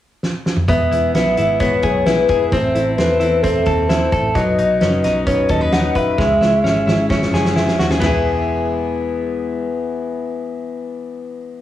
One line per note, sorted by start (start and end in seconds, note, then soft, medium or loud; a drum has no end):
0.23 snare medium
0.46 snare medium
0.57 mid tom medium
0.68 0.88 E1 medium
0.68 0.92 E2 medium
0.68 0.92 E3 medium
0.68 0.92 G#3 medium
0.68 0.92 B3 medium
0.68 0.91 E4 medium
0.68 0.90 G#4 medium
0.68 1.11 E5 medium
0.68 kick loud
0.68 closed hi-hat medium
0.91 1.11 E1 medium
0.91 1.13 G#3 soft
0.91 1.14 B3 soft
0.91 1.15 E4 soft
0.91 1.14 G#4 soft
0.91 closed hi-hat medium
1.14 1.34 B1 medium
1.14 1.37 G#3 soft
1.14 1.38 B3 soft
1.14 1.37 E4 soft
1.14 1.36 G#4 medium
1.14 1.61 E5 loud
1.14 snare medium
1.14 closed hi-hat medium
1.37 1.77 G#1 medium
1.37 1.60 G#3 soft
1.37 1.61 B3 soft
1.37 1.61 E4 soft
1.37 1.60 G#4 soft
1.37 closed hi-hat medium
1.60 1.83 E2 medium
1.60 1.84 E3 medium
1.60 1.84 G#3 medium
1.60 1.83 B3 medium
1.60 1.83 E4 medium
1.60 1.82 G#4 medium
1.60 2.07 C#5 medium
1.60 kick medium
1.60 closed hi-hat medium
1.82 2.22 B1 medium
1.82 2.05 G#3 soft
1.82 2.06 B3 soft
1.82 2.07 E4 soft
1.82 2.06 G#4 medium
1.82 kick medium
1.82 closed hi-hat medium
2.05 2.29 G#3 medium
2.05 2.30 B3 medium
2.05 2.30 E4 medium
2.05 2.29 G#4 medium
2.05 2.54 B4 medium
2.05 snare medium
2.05 closed hi-hat medium
2.28 2.52 G#3 soft
2.28 2.52 B3 soft
2.28 2.52 E4 medium
2.28 2.53 G#4 soft
2.28 kick medium
2.28 closed hi-hat medium
2.52 2.72 A1 medium
2.52 2.75 A2 medium
2.52 2.75 A3 medium
2.52 2.75 C4 medium
2.52 2.75 E4 medium
2.52 2.73 A4 medium
2.52 2.96 C5 medium
2.52 kick loud
2.52 closed hi-hat medium
2.75 2.95 A1 loud
2.75 2.97 C4 soft
2.75 2.98 E4 soft
2.75 2.98 A4 soft
2.75 closed hi-hat medium
2.97 3.18 E2 medium
2.97 3.21 A3 medium
2.97 3.21 C4 soft
2.97 3.21 E4 medium
2.97 3.20 A4 medium
2.97 3.43 B4 medium
2.97 snare medium
2.97 closed hi-hat medium
3.21 3.60 E2 medium
3.21 3.43 C4 soft
3.21 3.43 E4 soft
3.21 3.44 A4 soft
3.21 closed hi-hat medium
3.42 3.67 A2 medium
3.42 3.67 A3 medium
3.42 3.67 C4 medium
3.42 3.66 E4 medium
3.42 3.90 A4 loud
3.42 3.65 A4 medium
3.42 kick medium
3.42 closed hi-hat medium
3.66 4.06 D#2 medium
3.66 3.88 C4 soft
3.66 3.89 E4 soft
3.66 3.90 A4 soft
3.66 kick medium
3.66 closed hi-hat medium
3.88 4.12 A3 medium
3.88 4.13 C4 medium
3.88 4.13 E4 medium
3.88 4.11 A4 medium
3.88 4.24 C5 medium
3.88 snare loud
3.88 closed hi-hat medium
4.12 4.32 A1 medium
4.12 4.36 C4 soft
4.12 4.36 E4 soft
4.12 4.36 A4 medium
4.12 kick medium
4.12 closed hi-hat medium
4.34 4.55 B1 medium
4.34 6.18 F#3 medium
4.34 4.59 B3 medium
4.34 4.59 D#4 medium
4.34 4.58 F#4 medium
4.34 4.57 C#5 medium
4.34 4.78 D#5 loud
4.34 kick loud
4.34 closed hi-hat medium
4.58 4.78 B1 loud
4.58 4.80 D#4 soft
4.58 4.82 F#4 soft
4.58 4.81 C#5 soft
4.58 closed hi-hat medium
4.80 5.01 F#1 loud
4.80 5.04 B3 medium
4.80 5.26 C#4 medium
4.80 5.04 D#4 soft
4.80 5.04 F#4 medium
4.80 5.03 C#5 medium
4.80 5.23 D#5 loud
4.80 snare medium
4.80 closed hi-hat medium
5.04 5.43 B1 medium
5.04 5.26 D#4 soft
5.04 5.27 F#4 soft
5.04 5.27 C#5 soft
5.04 snare soft
5.04 closed hi-hat medium
5.26 5.50 B3 medium
5.26 6.23 C#4 medium
5.26 5.50 D#4 medium
5.26 5.49 F#4 medium
5.26 5.52 C#5 loud
5.26 5.48 C#5 medium
5.26 kick medium
5.26 closed hi-hat medium
5.49 5.89 D#2 medium
5.49 5.71 D#4 soft
5.49 5.72 F#4 soft
5.49 5.61 A4 medium
5.49 5.72 C#5 soft
5.49 5.74 D#5 loud
5.49 kick medium
5.49 closed hi-hat medium
5.61 5.95 B4 medium
5.72 5.95 B3 medium
5.72 5.96 D#4 medium
5.72 5.95 F#4 medium
5.72 5.94 C#5 medium
5.72 5.99 F#5 loud
5.72 snare loud
5.72 closed hi-hat medium
5.95 6.18 D#4 soft
5.95 6.19 F#4 soft
5.95 6.23 B4 medium
5.95 6.18 C#5 medium
5.95 7.56 E5 loud
5.95 kick medium
5.95 closed hi-hat medium
6.18 6.38 C#2 loud
6.18 6.41 C#3 medium
6.18 6.41 G#3 medium
6.18 6.41 C#4 medium
6.18 6.40 E4 medium
6.18 6.39 G#4 medium
6.18 6.39 C#5 medium
6.18 kick medium
6.18 snare soft
6.41 6.61 C#2 medium
6.41 6.63 C#4 soft
6.41 6.64 E4 soft
6.41 6.64 G#4 soft
6.41 6.64 C#5 soft
6.41 snare medium
6.64 6.83 G#1 medium
6.64 6.87 C#4 medium
6.64 6.86 E4 medium
6.64 6.86 G#4 medium
6.64 6.84 C#5 medium
6.64 snare medium
6.86 7.26 G#1 medium
6.86 7.08 C#4 soft
6.86 7.09 E4 medium
6.86 7.09 G#4 medium
6.86 7.09 C#5 medium
6.86 snare medium
7.09 7.32 C#3 medium
7.09 7.32 G#3 medium
7.09 7.32 C#4 medium
7.09 7.33 E4 medium
7.09 7.32 G#4 medium
7.09 7.31 C#5 medium
7.09 kick medium
7.09 snare medium
7.22 snare medium
7.33 7.71 F#1 medium
7.33 7.54 C#4 soft
7.33 7.55 E4 soft
7.33 7.56 G#4 soft
7.33 7.55 C#5 medium
7.33 snare medium
7.45 snare medium
7.55 7.78 C#4 medium
7.55 7.79 E4 medium
7.55 7.78 G#4 medium
7.55 7.78 C#5 medium
7.55 snare loud
7.68 snare medium
7.79 7.98 D#2 medium
7.79 8.01 C#4 soft
7.79 8.02 E4 medium
7.79 7.91 F#4 medium
7.79 8.02 G#4 medium
7.79 8.01 C#5 medium
7.79 snare medium
7.91 8.05 G#4 medium
7.91 snare medium
7.99 11.62 E1 medium
7.99 11.62 E3 medium
7.99 11.62 G#3 medium
7.99 11.62 B3 medium
7.99 snare medium
7.99 floor tom medium
7.99 ride bell medium
8.03 11.62 E4 medium
8.03 11.62 G#4 medium
8.03 11.62 E5 medium